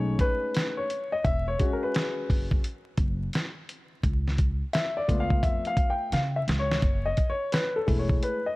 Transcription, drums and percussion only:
0.19 kick medium
0.19 closed hi-hat medium
0.55 snare loud
0.55 closed hi-hat medium
0.90 closed hi-hat medium
1.25 kick loud
1.25 closed hi-hat medium
1.59 kick medium
1.59 closed hi-hat medium
1.94 snare loud
1.94 closed hi-hat medium
2.30 kick medium
2.30 open hi-hat soft
2.51 kick medium
2.64 closed hi-hat medium
2.97 kick medium
2.97 closed hi-hat medium
3.33 snare loud
3.33 closed hi-hat medium
3.69 closed hi-hat medium
4.04 kick loud
4.04 closed hi-hat medium
4.28 snare soft
4.38 kick medium
4.38 closed hi-hat medium
4.73 snare loud
4.73 closed hi-hat medium
5.09 kick medium
5.09 closed hi-hat medium
5.30 kick medium
5.43 kick medium
5.43 closed hi-hat medium
5.65 closed hi-hat soft
5.77 kick loud
5.77 closed hi-hat medium
6.12 snare medium
6.12 closed hi-hat medium
6.48 snare medium
6.48 closed hi-hat medium
6.71 snare medium
6.82 kick loud
6.82 closed hi-hat medium
7.17 kick medium
7.17 closed hi-hat medium
7.52 snare loud
7.52 closed hi-hat medium
7.88 kick medium
7.88 open hi-hat medium
8.09 kick medium
8.23 closed hi-hat medium

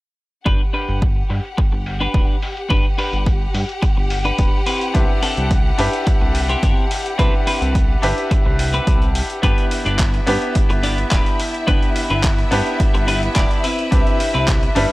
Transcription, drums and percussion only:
0.46 kick loud
0.46 closed hi-hat medium
0.74 open hi-hat medium
0.89 closed hi-hat soft
1.02 kick loud
1.02 closed hi-hat medium
1.30 open hi-hat medium
1.45 closed hi-hat soft
1.58 kick loud
1.58 closed hi-hat medium
1.86 open hi-hat medium
2.01 closed hi-hat soft
2.14 kick loud
2.14 closed hi-hat medium
2.42 open hi-hat medium
2.57 closed hi-hat soft
2.70 kick loud
2.70 closed hi-hat medium
2.98 open hi-hat loud
3.13 closed hi-hat soft
3.26 kick loud
3.26 closed hi-hat medium
3.55 open hi-hat medium
3.69 closed hi-hat soft
3.82 kick loud
3.82 closed hi-hat medium
4.10 open hi-hat medium
4.25 closed hi-hat soft
4.38 kick loud
4.38 closed hi-hat medium
4.66 open hi-hat medium
4.81 closed hi-hat soft
4.95 kick loud
4.95 closed hi-hat medium
5.23 open hi-hat loud
5.37 closed hi-hat soft
5.51 kick loud
5.51 closed hi-hat medium
5.79 open hi-hat medium
5.93 closed hi-hat soft
6.07 kick loud
6.07 closed hi-hat medium
6.35 open hi-hat loud
6.50 closed hi-hat soft
6.63 kick loud
6.63 closed hi-hat medium
6.91 open hi-hat medium
7.06 closed hi-hat soft
7.19 kick loud
7.19 closed hi-hat medium
7.47 open hi-hat loud
7.62 closed hi-hat soft
7.75 kick loud
7.75 closed hi-hat medium
8.03 open hi-hat medium
8.18 closed hi-hat soft
8.31 kick loud
8.31 closed hi-hat medium
8.59 open hi-hat loud
8.74 closed hi-hat soft
8.87 kick loud
8.87 closed hi-hat medium
9.02 closed hi-hat soft
9.15 open hi-hat medium
9.30 closed hi-hat soft
9.43 kick loud
9.43 closed hi-hat medium
9.58 closed hi-hat soft
9.71 open hi-hat loud
9.86 closed hi-hat soft
9.99 kick loud
9.99 clap loud
9.99 closed hi-hat medium
10.14 closed hi-hat soft
10.27 open hi-hat medium
10.42 closed hi-hat soft
10.55 kick loud
10.55 closed hi-hat medium
10.70 closed hi-hat soft
10.83 open hi-hat medium
10.98 closed hi-hat soft
11.11 kick loud
11.11 clap loud
11.11 closed hi-hat medium
11.26 closed hi-hat soft
11.40 open hi-hat medium
11.54 closed hi-hat soft
11.68 kick loud
11.68 closed hi-hat medium
11.83 closed hi-hat soft
11.96 open hi-hat loud
12.10 closed hi-hat soft
12.23 kick loud
12.23 clap loud
12.23 closed hi-hat medium
12.39 closed hi-hat soft
12.52 open hi-hat medium
12.67 closed hi-hat soft
12.80 kick loud
12.80 closed hi-hat medium
12.95 closed hi-hat soft
13.08 open hi-hat loud
13.23 closed hi-hat soft
13.36 kick loud
13.36 clap loud
13.36 closed hi-hat medium
13.51 closed hi-hat soft
13.64 open hi-hat medium
13.79 closed hi-hat soft
13.92 kick loud
13.92 closed hi-hat medium
14.07 closed hi-hat soft
14.20 open hi-hat loud
14.35 closed hi-hat soft
14.48 kick loud
14.48 clap loud
14.48 closed hi-hat medium
14.63 closed hi-hat soft
14.76 open hi-hat medium

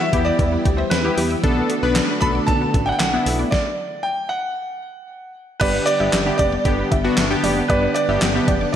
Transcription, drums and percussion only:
0.13 kick medium
0.13 closed hi-hat medium
0.39 kick medium
0.39 closed hi-hat medium
0.66 kick medium
0.66 closed hi-hat medium
0.91 snare loud
0.91 closed hi-hat medium
1.18 open hi-hat medium
1.44 kick loud
1.44 closed hi-hat medium
1.70 closed hi-hat medium
1.96 snare loud
1.96 clap loud
1.96 closed hi-hat medium
2.22 kick medium
2.22 closed hi-hat medium
2.48 kick medium
2.48 closed hi-hat medium
2.74 kick medium
2.74 closed hi-hat medium
3.00 snare loud
3.00 clap medium
3.00 closed hi-hat medium
3.26 open hi-hat medium
3.52 kick loud
3.52 snare medium
5.61 kick loud
5.61 closed hi-hat medium
5.61 crash loud
5.87 closed hi-hat medium
6.13 snare loud
6.13 clap loud
6.13 closed hi-hat medium
6.39 kick medium
6.39 closed hi-hat medium
6.65 kick medium
6.65 closed hi-hat medium
6.92 kick loud
6.92 closed hi-hat medium
7.17 snare loud
7.17 clap medium
7.17 closed hi-hat medium
7.44 open hi-hat medium
7.70 kick loud
7.70 closed hi-hat medium
7.96 closed hi-hat medium
8.22 snare loud
8.22 clap loud
8.22 closed hi-hat medium
8.48 kick medium
8.48 closed hi-hat medium

